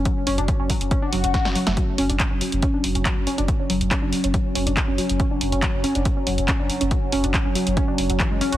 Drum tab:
HH |x-oxx-oxx-oxx-ox|x-oxx-oxx-oxx-ox|x-oxx-oxx-oxx-ox|x-oxx-oxx-oxx-ox|
CP |----------------|----x-------x---|----x-------x---|----x-------x---|
SD |------------oo-o|----------------|----------------|----------------|
BD |o---o-o-o---o---|o---o---o---o---|o---o---o---o---|o---o---o---o---|

HH |x-oxx-oxx-oxx-ox|
CP |----x-------x---|
SD |----------------|
BD |o---o---o---o---|